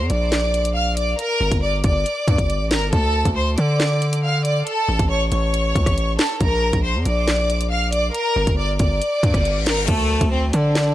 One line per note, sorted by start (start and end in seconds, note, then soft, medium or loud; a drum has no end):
0.10 1.15 A#1 loud
0.10 0.71 D5 medium
0.10 0.72 D6 medium
0.10 closed hi-hat medium
0.32 snare loud
0.32 clap medium
0.32 closed hi-hat medium
0.54 closed hi-hat medium
0.65 closed hi-hat medium
0.76 0.92 F5 medium
0.76 0.93 F6 medium
0.97 1.14 D5 medium
0.97 1.14 D6 medium
0.97 closed hi-hat medium
1.19 1.60 A#4 loud
1.19 1.60 A#5 medium
1.19 closed hi-hat medium
1.41 1.51 G1 loud
1.51 1.83 G1 loud
1.51 kick medium
1.51 closed hi-hat medium
1.62 1.79 D5 medium
1.62 1.80 D6 medium
1.84 2.05 G1 loud
1.84 2.67 D5 medium
1.84 2.68 D6 medium
1.84 kick medium
1.84 closed hi-hat medium
2.06 closed hi-hat medium
2.28 2.38 G2 loud
2.28 kick loud
2.28 closed hi-hat medium
2.38 2.62 G1 loud
2.38 kick loud
2.38 closed hi-hat medium
2.50 closed hi-hat medium
2.60 2.78 A1 loud
2.71 2.88 A#4 medium
2.71 2.88 A#5 medium
2.71 snare loud
2.71 clap loud
2.71 closed hi-hat medium
2.77 2.92 G1 loud
2.93 3.24 D2 loud
2.93 3.34 A4 loud
2.93 3.34 A5 medium
2.93 kick loud
2.93 closed hi-hat medium
3.25 3.57 D2 loud
3.25 kick medium
3.25 closed hi-hat medium
3.36 3.53 C5 medium
3.36 3.54 C6 medium
3.58 4.63 D3 loud
3.58 4.19 D5 medium
3.58 4.20 D6 medium
3.58 closed hi-hat medium
3.80 snare loud
3.80 clap medium
3.80 closed hi-hat medium
4.02 closed hi-hat medium
4.13 closed hi-hat medium
4.23 4.40 F5 medium
4.23 4.41 F6 medium
4.45 4.62 D5 medium
4.45 4.62 D6 medium
4.45 closed hi-hat medium
4.67 5.08 A4 loud
4.67 5.08 A5 medium
4.67 closed hi-hat medium
4.89 4.99 A1 loud
4.99 5.31 A1 loud
4.99 kick medium
4.99 closed hi-hat medium
5.10 5.27 C#5 medium
5.10 5.27 C#6 medium
5.32 5.74 A1 loud
5.32 6.15 C#5 medium
5.32 6.15 C#6 medium
5.32 closed hi-hat medium
5.54 closed hi-hat medium
5.75 5.86 C#2 loud
5.75 kick loud
5.75 closed hi-hat medium
5.86 6.18 A1 loud
5.86 kick medium
5.86 cross-stick medium
5.86 closed hi-hat medium
5.98 closed hi-hat medium
6.19 6.35 A4 medium
6.19 6.36 A5 medium
6.19 snare loud
6.19 clap medium
6.19 open hi-hat medium
6.41 6.72 A#1 loud
6.41 6.82 A#4 loud
6.41 6.82 A#5 medium
6.41 kick loud
6.41 closed hi-hat medium
6.73 6.96 A#1 loud
6.73 kick medium
6.73 closed hi-hat medium
6.84 7.01 C5 medium
6.84 7.01 C6 medium
6.95 7.05 F2 loud
7.05 8.11 A#1 loud
7.05 7.67 D5 medium
7.05 7.67 D6 medium
7.05 closed hi-hat medium
7.28 snare loud
7.28 clap medium
7.28 closed hi-hat medium
7.50 closed hi-hat medium
7.61 closed hi-hat medium
7.71 7.88 F5 medium
7.71 7.88 F6 medium
7.93 8.10 D5 medium
7.93 8.10 D6 medium
7.93 closed hi-hat medium
8.14 8.55 A#4 loud
8.14 8.56 A#5 medium
8.14 closed hi-hat medium
8.36 8.46 G1 loud
8.47 8.78 G1 loud
8.47 kick medium
8.47 closed hi-hat medium
8.58 8.75 D5 medium
8.58 8.75 D6 medium
8.79 9.01 G1 loud
8.79 9.63 D5 medium
8.79 9.63 D6 medium
8.79 kick medium
8.79 closed hi-hat medium
9.01 closed hi-hat medium
9.01 reverse cymbal medium
9.23 9.33 G2 loud
9.23 kick loud
9.23 closed hi-hat medium
9.34 9.57 G1 loud
9.34 kick medium
9.34 cross-stick medium
9.34 closed hi-hat medium
9.45 closed hi-hat medium
9.56 9.74 A1 loud
9.66 9.84 A#4 medium
9.66 9.84 A#5 medium
9.66 snare loud
9.66 clap medium
9.66 closed hi-hat medium
9.72 9.88 G1 medium
9.88 10.20 D2 loud
9.88 10.29 A3 loud
9.88 10.30 A4 medium
9.88 kick loud
9.88 closed hi-hat medium
9.88 crash loud
9.88 impact medium
10.21 10.52 D2 loud
10.21 kick medium
10.21 closed hi-hat medium
10.32 10.49 C4 medium
10.32 10.49 C5 medium
10.53 10.95 D3 loud
10.53 10.95 D4 medium
10.53 10.95 D5 medium
10.53 closed hi-hat medium
10.75 snare loud
10.75 clap medium
10.75 closed hi-hat medium